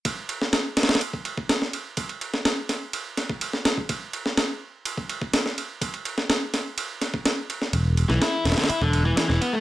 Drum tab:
RD |x---x---x---xxxxx---x---x---x---|x-x-x---x---x---x---x---x---x---|x---x---x-------x---x---x---x---|x-x-x---x---x---x---x---x---x---|
SD |------o-o---oooo--------o-o-----|------o-o---o-------o-----o-o---|------o-o---------------o-o-----|------o-o---o-------o---o-----o-|
BD |o-----------------o---o---------|o---------------------o-------o-|o-----------------o---o---------|o---------------------o---------|

RD |x---x---x---xxxxx---x---x---x---|
SD |------o-o---oooo--------o-o-----|
BD |o-----------------o---o---------|